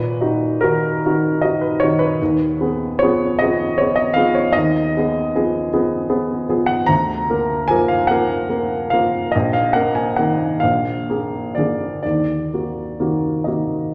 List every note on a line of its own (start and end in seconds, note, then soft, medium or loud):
0.00 0.19 A#2 medium
0.00 0.62 B4 medium
0.21 0.59 D#4 medium
0.21 0.59 F#4 medium
0.61 1.00 D#3 soft
0.61 1.01 D#4 soft
0.61 1.00 F#4 medium
0.61 1.42 A#4 medium
1.06 1.40 D#3 soft
1.06 1.41 D#4 soft
1.06 1.41 F#4 medium
1.41 1.78 D#4 soft
1.41 1.78 F#4 soft
1.41 1.62 D#5 medium
1.61 1.81 B4 medium
1.80 2.17 D#3 soft
1.80 2.17 D#4 soft
1.80 2.00 C#5 medium
1.84 2.18 F#4 soft
1.99 3.00 B4 medium
2.21 2.60 D#2 medium
2.61 2.97 B3 soft
2.61 2.97 G#4 soft
2.99 3.36 F3 medium
2.99 3.37 B3 medium
2.99 3.38 C#5 medium
3.03 3.37 G#4 medium
3.39 3.75 F3 soft
3.39 3.75 B3 soft
3.39 3.75 G#4 medium
3.39 3.77 D#5 medium
3.78 4.14 B3 soft
3.78 4.14 G#4 soft
3.78 3.97 C#5 medium
3.96 4.15 D#5 medium
4.14 4.51 F3 soft
4.14 4.51 B3 medium
4.14 4.51 G#4 medium
4.14 4.34 F5 medium
4.35 4.55 C#5 medium
4.53 4.94 D#2 medium
4.53 6.69 D#5 loud
4.97 5.32 B3 soft
4.97 5.32 G#4 medium
5.35 5.69 F3 medium
5.35 5.69 B3 soft
5.35 5.70 G#4 medium
5.73 6.07 F3 medium
5.73 6.07 B3 medium
5.73 6.07 G#4 medium
6.10 6.46 B3 soft
6.10 6.46 G#4 medium
6.49 6.86 F3 soft
6.49 6.86 B3 soft
6.49 6.86 G#4 medium
6.66 6.88 F#5 medium
6.86 7.28 D2 medium
6.86 7.67 A#5 medium
7.30 7.65 A#3 soft
7.30 7.66 A#4 medium
7.68 8.06 F3 soft
7.68 8.06 A#3 soft
7.68 8.06 A#4 medium
7.68 7.88 G#5 loud
7.88 8.09 F5 medium
8.07 8.47 F3 soft
8.07 8.47 A#3 soft
8.07 8.47 A#4 medium
8.07 8.91 F#5 medium
8.50 8.88 A#3 soft
8.50 8.88 A#4 soft
8.90 9.31 F3 soft
8.90 9.31 A#3 soft
8.90 9.31 A#4 soft
8.90 9.33 F5 medium
9.32 9.75 A#1 medium
9.32 9.54 D#5 medium
9.53 9.75 F5 medium
9.73 10.14 A#3 soft
9.73 10.14 A#4 soft
9.73 9.96 F#5 medium
9.95 10.17 G#5 medium
10.16 10.58 D#3 soft
10.16 10.58 A#3 soft
10.16 10.58 A#4 soft
10.16 10.61 F#5 medium
10.60 11.07 A#1 medium
10.60 11.54 F5 medium
11.10 11.52 A#3 soft
11.10 11.53 G#4 soft
11.55 12.00 D3 soft
11.55 12.01 A#3 soft
11.55 12.01 D5 medium
11.59 12.01 G#4 soft
12.03 12.51 D#2 soft
12.03 13.46 D5 medium
12.54 12.96 A#3 soft
12.54 12.97 F#4 soft
13.00 13.43 D#3 soft
13.00 13.43 A#3 soft
13.00 13.44 F#4 soft
13.44 13.90 D#3 soft
13.44 13.90 A#3 soft
13.44 13.91 F#4 soft
13.44 13.94 D#5 soft